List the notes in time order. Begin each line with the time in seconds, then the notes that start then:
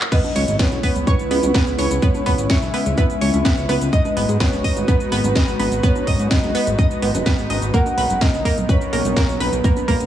0.00 clap
0.12 C#3 G#3 B3 E4 B4 D#5, kick, closed hi-hat, crash, impact, cabasa
0.24 closed hi-hat, high conga, cabasa
0.36 C#2 C#5 C#6, open hi-hat, low conga
0.48 G#1, closed hi-hat, cabasa
0.59 B3 B4 C#5, kick, snare, closed hi-hat, cabasa
0.72 B1, closed hi-hat, high conga, cabasa
0.83 B3 B4, kick, open hi-hat
0.96 C#2, closed hi-hat, low conga, cabasa
1.07 B4 C#5 C#6, kick, closed hi-hat, high conga, cabasa
1.19 closed hi-hat, cabasa
1.31 C#2 B3 B4, open hi-hat
1.43 C#2, closed hi-hat, high conga, low conga, cabasa
1.54 B3 B4, kick, snare, closed hi-hat, cabasa
1.67 C#2, closed hi-hat, cabasa
1.78 C#2 C#5 C#6, open hi-hat, high conga
1.91 C#2, closed hi-hat, cabasa
2.02 B3 C#4 B4 C#5, kick, closed hi-hat, cabasa
2.15 closed hi-hat, high conga, cabasa
2.26 C#2 B3 B4, kick, open hi-hat, low conga
2.38 G#1, closed hi-hat, cabasa
2.50 C#5 E5 C#6, kick, snare, closed hi-hat, cabasa
2.62 B1, closed hi-hat, high conga, cabasa
2.74 B3 B4, open hi-hat
2.86 C#2, closed hi-hat, low conga, cabasa
2.98 B3 B4, kick, closed hi-hat, high conga, cabasa
3.10 closed hi-hat, cabasa
3.21 C#2 C#5 C#6, open hi-hat
3.34 C#2, closed hi-hat, high conga, cabasa
3.45 B3 B4, kick, snare, closed hi-hat, cabasa
3.57 C#2, closed hi-hat, cabasa
3.69 C#2 B3 B4, open hi-hat, high conga
3.81 C#2, closed hi-hat, cabasa
3.93 D#4 F#4 B4 D#5 D#6, kick, closed hi-hat, cabasa
4.05 closed hi-hat, high conga, cabasa
4.17 G#1 B3 B4, open hi-hat, low conga
4.29 G#2, closed hi-hat, cabasa
4.40 B3 B4 C#5, kick, snare, closed hi-hat, cabasa
4.53 F#1, closed hi-hat, high conga, cabasa
4.64 D#5 D#6, kick, open hi-hat
4.77 G#1, closed hi-hat, low conga, cabasa
4.88 B3 B4, kick, closed hi-hat, high conga, cabasa
5.00 closed hi-hat, cabasa
5.12 G#1 B3 B4, open hi-hat
5.24 G#1, closed hi-hat, high conga, low conga, cabasa
5.36 D#5 D#6, kick, snare, closed hi-hat, cabasa
5.48 G#1, closed hi-hat, cabasa
5.60 G#1 B3 B4, open hi-hat, high conga
5.72 G#1, closed hi-hat, cabasa
5.83 B3 B4 C#5, kick, closed hi-hat, cabasa
5.96 closed hi-hat, high conga, cabasa
6.07 G#1 D#5 D#6, kick, open hi-hat, low conga
6.19 G#2, closed hi-hat, cabasa
6.31 B3 B4 D#5, kick, snare, closed hi-hat, cabasa
6.43 F#1, closed hi-hat, high conga, cabasa
6.55 B3 B4, open hi-hat
6.67 G#1, closed hi-hat, low conga, cabasa
6.79 D#5 D#6, kick, closed hi-hat, high conga, cabasa
6.91 closed hi-hat, cabasa
7.02 G#1 B3 B4, open hi-hat
7.15 F#1, closed hi-hat, high conga, cabasa
7.26 B3 B4, kick, snare, closed hi-hat, cabasa
7.38 G#1, closed hi-hat, cabasa
7.50 G#1 D#5 D#6, open hi-hat, high conga
7.62 G#1, closed hi-hat, cabasa
7.74 F#3 A#3 B3 A#4 F#5, kick, closed hi-hat, cabasa
7.86 closed hi-hat, high conga, cabasa
7.98 B1 B4 B5, open hi-hat, low conga
8.10 F#1, closed hi-hat, cabasa
8.21 A#3 A#4 D#5, kick, snare, closed hi-hat, cabasa
8.34 F#1, closed hi-hat, high conga, cabasa
8.45 A#3 A#4, kick, open hi-hat
8.57 B1, closed hi-hat, low conga, cabasa
8.69 B4 C#5 B5, kick, closed hi-hat, high conga, cabasa
8.81 closed hi-hat, cabasa
8.93 B1 A#3 A#4, open hi-hat
9.05 B1, closed hi-hat, high conga, low conga, cabasa
9.16 A#3 A#4, kick, snare, closed hi-hat, cabasa
9.29 B1, closed hi-hat, cabasa
9.40 B1 B4 B5, open hi-hat, high conga
9.53 B1, closed hi-hat, cabasa
9.64 A#3 A#4, kick, closed hi-hat, cabasa
9.76 closed hi-hat, high conga, cabasa
9.88 B1 A#3 A#4, kick, open hi-hat, low conga
10.00 F#1, closed hi-hat, cabasa